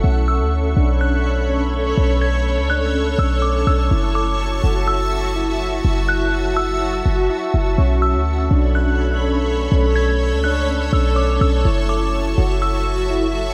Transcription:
Already playing: C#6
0.04 B1 C#4 A4 C#5 B5
0.28 E6
0.40 D2
0.77 B1 D4
1.01 C#4 F#6
1.25 D4
1.50 C#4
1.98 B1 C#4 A5
2.22 G#6
2.58 C#2
2.70 D4 F#6
2.94 C#4
3.18 B1 D4 E6
3.42 C#4 D6
3.67 B1 E6
3.91 F#1 E4 F#4 E5
4.15 D6
4.64 F#1 F#4
4.88 E4 E6
5.12 F#4
5.36 E4
5.84 F#1 E4
6.09 F#6
6.57 F#4 E6
6.82 E4
7.06 F#1 F#4
7.30 E4
7.54 F#1
7.78 B1 C#4 A4 C#5 B5 C#6
8.02 E6
8.15 D2
8.51 B1 D4
8.75 C#4 F#6
8.99 D4
9.24 C#4
9.72 B1 C#4 A5
9.96 G#6
10.32 C#2
10.44 D4 F#6
10.68 C#4
10.92 B1 D4 E6
11.16 C#4 D6
11.41 B1 E6
11.65 F#1 E4 F#4 E5
11.89 D6
12.38 F#1 F#4
12.62 E4 E6
12.86 F#4
13.10 E4

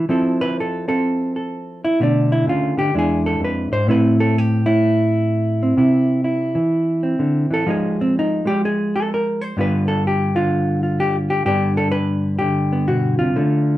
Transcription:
0.09 F3 C4 E4 A4
0.41 B4
0.60 A4
0.88 C4 A4
1.36 A4
1.85 E4
2.00 B2 D3 A3 D4
2.32 E4
2.47 C#3 F4
2.77 D3 G4
2.94 E2 G#3 D4 E4
2.99 G#4
3.26 A4
3.40 F2
3.44 B4
3.72 G#2 C5
3.87 A2 A3 C4 E4 B4
4.20 A4
4.38 G4
4.66 A3 E4
5.63 C4
5.77 C3 E4
6.24 E4
6.55 E3
7.03 C4
7.19 D3
7.51 E3 A4
7.66 F3 G#3 D#4 G#4
8.01 C4
8.19 D#4
8.45 G#3 G4
8.65 G#4
8.96 A4
9.14 A#4
9.41 C5
9.57 G2 D3 B3 F4
9.61 B4
9.88 A4
10.07 G4
10.35 D3 F4
10.83 F4
11.00 G4
11.30 G4
11.45 G2 D3 B3 D4 G4
11.77 A4
11.92 B4
12.39 D3 G4
12.73 B3
12.88 B2 F#4
13.19 C3 F4
13.36 D3 A3

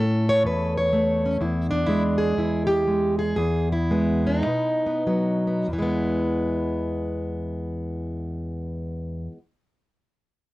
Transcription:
Already playing: A2 A3 C#4 A4
0.29 C#5
0.44 E2 B4
0.77 C#5
0.93 A3
1.25 C#4
1.41 E2 E4
1.71 D4
1.86 G#3 E4
2.18 G#4
2.37 E2 E4
2.67 G4
2.87 G#3
3.19 G#4
3.36 E2 G#4
3.72 E4
3.91 G#3 B3
4.27 D#4
4.46 B2 B3
4.86 B3
5.07 F#3 B3
5.47 B3
5.68 E2
5.73 E3
5.79 G#3 B3

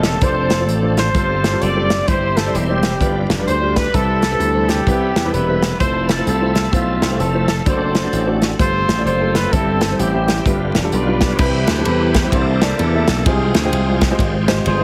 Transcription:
Already playing: E1 C#3 G3 A3 C4 C#4 F4 G4 A4 D#5
0.03 A4, snare, closed hi-hat
0.21 F1 F3 A3 C4 D4 F4 A4 C5, kick, closed hi-hat
0.50 snare, closed hi-hat
0.59 A3 D4 F4 C5
0.68 A1, closed hi-hat
0.82 A3 D4 F4 C5
0.97 C5, snare, closed hi-hat
1.15 G1 G2 G3 C4 F4 A4 C5, kick, closed hi-hat
1.44 snare, closed hi-hat
1.52 G3 C4 F4 A4
1.61 F#1 F4 A4 D5, closed hi-hat
1.76 G3 C4 F4 A4
1.90 snare, closed hi-hat
2.07 G1 G2 G3 C4 E4 G4 C5, kick, closed hi-hat
2.37 A4, snare, closed hi-hat
2.46 G3 C4 E4 D5
2.54 E1 C4 E4 G4, closed hi-hat
2.69 G3 C4 E4 D5
2.83 snare, closed hi-hat
3.00 G1 G2 G3 D4 F4 B4, kick, closed hi-hat
3.30 F1, snare, closed hi-hat
3.39 G3 D4 F4 B4
3.47 D2 C5, closed hi-hat
3.61 G3 D4 F4 G4
3.76 B4, kick, snare, closed hi-hat
3.93 C2 C3 G3 C4 E4 A4 B4, kick, closed hi-hat
4.22 snare, closed hi-hat
4.32 G3 C4 E4 B4
4.40 D2, closed hi-hat
4.54 G3 C4 E4 C5
4.69 G4, snare, closed hi-hat
4.87 C2 G3 B3 C4 E4 G4 B4, kick, closed hi-hat
5.16 E2, snare, closed hi-hat
5.25 G3 C4 E4 B4
5.33 E1 E4 G4 B4, closed hi-hat
5.48 G3 C4 E4 B4
5.62 snare, closed hi-hat
5.80 F1 F3 A3 C4 E4 F4 A4 C5 E5, kick, closed hi-hat
6.09 A4, snare, closed hi-hat
6.18 A3 E4 F4 C5
6.27 C2 C4 A4 E5, closed hi-hat
6.41 A3 E4 F4 C5
6.55 snare, closed hi-hat
6.73 B1 A3 C4 E4 F4 C5, kick, closed hi-hat
7.02 C2, snare, closed hi-hat
7.10 A3 E4 F4 C5
7.19 F1 A4, closed hi-hat
7.33 A3 E4 F4 C5
7.48 A4, snare, closed hi-hat
7.65 F#1 F3 A3 C4 D4 F#4 A4 C5, kick, closed hi-hat
7.71 F#3
7.95 snare, closed hi-hat
8.04 A3 D4 F#4 C5
8.13 A1, closed hi-hat
8.27 A3 D4 F#4 C5
8.42 snare, closed hi-hat
8.59 G1 G2 F3 A3 B3 F4 G4 A4 C5, kick, closed hi-hat
8.66 C4
8.88 A1, snare, closed hi-hat
8.97 A3 F4 G4 D5
9.05 F#1 F4 A4 C5, closed hi-hat
9.21 A3 F4 G4 A4
9.35 B4, snare, closed hi-hat
9.53 G1 G2 G3 C4 E4 G4 A4 C5, kick, closed hi-hat
9.81 snare, closed hi-hat
9.91 G3 C4 E4 C5
9.99 A1 C4 E4 G4, closed hi-hat
10.14 G3 C4 E4 G4
10.28 snare, closed hi-hat
10.46 G1 G2 D3 G3 B3 D4 F4 B4, kick, closed hi-hat
10.75 E1, snare, closed hi-hat
10.84 G3 D4 F4 A4
10.92 B1 F4 B4 D5, closed hi-hat
11.08 G3 D4 F4 B4
11.21 kick, snare, closed hi-hat
11.39 C2 C3 D#3 G3 C4 E4 G4 B4, kick, crash
11.45 E3
11.67 D2, snare, ride bell
11.78 G3 C4 E4 A4
11.85 E2 E4 G4 B4, ride bell
12.14 kick, snare, ride bell
12.24 G3 C4 E4 G4
12.32 C2 C3 E3 A#3 D4 E4 G4 A4 C5, kick, ride bell
12.62 A#3 E4 A4 D5, snare, ride bell
12.79 E2 D4 E4 A4, ride bell
12.95 A#3 E4 A4 E5
13.08 B1, snare, ride bell
13.26 C2 C3 F3 G#3 C4 F4 G4 G#4 C5 G5, kick, ride bell
13.54 D2, snare, ride bell
13.64 G#3 F4 C5 G5
13.73 C2, ride bell
14.01 kick, snare, ride bell
14.11 G#3 F4 G4 C5
14.19 G#1, kick, ride bell
14.48 G#3 F4 G4 C5, snare, ride bell
14.66 G1 F4 G#4 C5, ride bell
14.81 G#3 F4 G4

